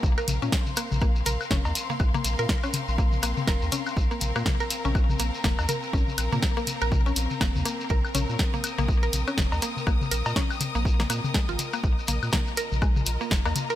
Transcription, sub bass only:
0.03 0.14 A#1 loud
0.28 0.39 A#1 medium
0.42 0.50 A#2 medium
0.91 1.22 A#1 loud
1.26 1.37 A#1 medium
1.51 1.62 F1 loud
1.65 1.73 D#2 medium
2.00 2.11 A#1 loud
2.24 2.36 A#1 medium
2.39 2.47 A#2 medium
2.88 3.19 A#1 loud
3.23 3.34 A#1 medium
3.47 3.59 F1 loud
3.62 3.70 D#2 medium
3.97 4.08 A#1 loud
4.21 4.32 A#1 medium
4.36 4.44 A#2 medium
4.85 5.16 A#1 loud
5.20 5.31 A#1 medium
5.44 5.55 F1 loud
5.59 5.67 D#2 medium
5.93 6.05 A#1 loud
6.18 6.29 A#1 medium
6.32 6.40 A#2 medium
6.82 7.13 A#1 loud
7.16 7.27 A#1 medium
7.41 7.52 F1 loud
7.55 7.63 D#2 medium
7.90 8.01 A#1 loud
8.15 8.26 A#1 medium
8.29 8.37 A#2 medium
8.78 9.09 A#1 loud
9.13 9.24 A#1 medium
9.38 9.49 F1 loud
9.52 9.60 D#2 medium
9.87 9.98 A#1 loud
10.11 10.23 A#1 medium
10.26 10.34 A#2 medium
10.75 11.06 A#1 loud
11.10 11.21 A#2 medium
11.49 11.57 G#1 loud
11.84 11.95 A#1 loud
12.08 12.19 A#1 medium
12.23 12.30 A#2 medium
12.72 13.03 A#1 loud
13.06 13.18 A#1 medium
13.31 13.42 F1 loud
13.46 13.53 D#2 medium

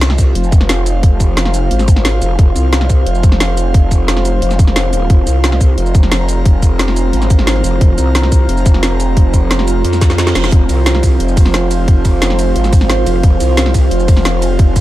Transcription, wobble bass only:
0.00 0.34 C2 loud
0.35 1.70 F1 loud
1.71 2.20 G#1 loud
2.22 2.37 F1 loud
2.39 2.54 F1 loud
2.56 3.05 C2 loud
3.06 4.41 F1 loud
4.42 4.89 F1 loud
4.89 5.09 E1 loud
5.10 5.25 F1 loud
5.27 5.76 C2 loud
5.78 7.12 F1 loud
7.13 7.63 G#1 loud
7.64 7.80 F1 loud
7.81 7.97 F1 loud
7.98 8.48 C2 loud
8.49 9.83 F1 medium
9.84 10.34 F2 loud
10.35 10.51 F1 loud
10.52 10.68 F1 loud
10.69 11.19 C2 loud
11.20 12.54 F1 loud
12.56 13.05 G#1 loud
13.06 13.22 F1 loud
13.23 13.39 F1 loud
13.40 13.90 C2 loud
13.91 14.81 F1 loud

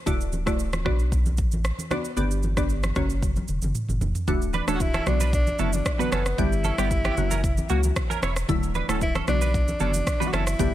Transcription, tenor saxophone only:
4.75 4.83 F#4 medium
4.82 5.07 E4 loud
5.08 5.32 D4 loud
5.34 5.62 D4 loud
5.60 5.75 E4 loud
5.74 5.92 D4 loud
5.93 6.02 D4 medium
6.00 6.40 B3 medium
6.39 7.96 E4 loud
9.03 9.14 E4 loud
9.29 9.77 D4 loud
9.81 10.29 D4 loud
10.27 10.35 F#4 medium
10.33 10.74 E4 loud

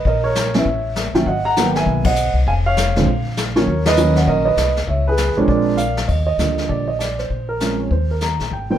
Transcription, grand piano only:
0.07 0.24 A#4 medium
0.07 0.24 D#5 medium
0.24 0.53 A#4 medium
0.24 0.55 C#5 medium
0.54 0.65 E3 medium
0.54 0.65 G3 medium
0.54 0.65 B3 medium
0.54 0.65 C#4 medium
0.54 1.12 C#5 medium
0.54 1.14 E5 medium
1.14 1.25 D#3 medium
1.14 1.25 F#3 medium
1.14 1.25 A#3 medium
1.14 1.25 C#4 medium
1.14 1.26 E5 medium
1.14 1.27 G5 medium
1.27 1.44 D#5 medium
1.27 1.44 F#5 medium
1.45 1.65 F#5 medium
1.45 1.67 A#5 loud
1.57 2.01 D#3 medium
1.57 2.02 F#3 medium
1.57 2.02 A#3 medium
1.57 2.02 B3 medium
1.66 1.75 G5 medium
1.76 2.04 E5 medium
1.76 2.04 G#5 medium
2.06 2.34 D#5 medium
2.06 2.33 F#5 medium
2.48 2.53 F5 medium
2.48 2.53 G#5 medium
2.66 3.05 C#5 medium
2.66 3.59 F5 loud
2.96 3.06 D3 medium
2.96 3.06 F3 medium
2.96 3.07 G#3 medium
2.96 3.07 C4 medium
3.56 3.66 D#3 medium
3.56 3.66 F#3 medium
3.56 3.66 A#3 medium
3.56 3.66 C#4 medium
3.56 3.84 A#4 medium
3.56 3.87 C#5 medium
3.87 4.15 B4 medium
3.87 4.16 D#5 loud
3.97 4.42 D#3 medium
3.97 4.42 F#3 medium
3.97 4.43 A#3 medium
3.97 4.43 C#4 medium
4.17 4.26 D#5 medium
4.17 4.27 F#5 medium
4.28 4.45 A#4 medium
4.28 4.44 D#5 medium
4.45 4.75 B4 medium
4.45 4.74 D#5 medium
4.87 5.06 C#5 medium
4.87 5.07 E5 medium
5.08 5.36 G#4 medium
5.08 5.38 B4 medium
5.37 5.77 F3 medium
5.37 5.77 G#3 medium
5.37 5.77 C4 medium
5.37 5.77 D4 medium
5.37 5.49 A#4 medium
5.37 5.48 C#5 medium
5.49 5.95 A#4 medium
5.49 5.94 D5 medium
5.77 6.09 F5 medium
6.08 6.25 D#5 medium
6.27 6.70 D#5 medium
6.39 6.85 D3 soft
6.39 6.84 F3 soft
6.39 6.84 G3 soft
6.39 6.84 A#3 soft
6.69 6.87 D5 medium
6.88 7.00 D#5 medium
6.99 7.19 D5 medium
7.19 7.47 C5 medium
7.49 7.77 A#4 medium
7.60 7.91 F3 soft
7.60 7.91 G#3 soft
7.60 7.91 C4 soft
7.60 7.91 C#4 soft
7.80 7.90 C#5 medium
7.92 8.11 C5 medium
8.11 8.23 A#4 medium
8.23 8.54 A#5 medium
8.53 8.70 G5 medium
8.70 8.78 D#3 medium
8.70 8.78 G3 medium
8.70 8.78 A#3 medium
8.70 8.78 C4 medium
8.70 8.78 G5 medium

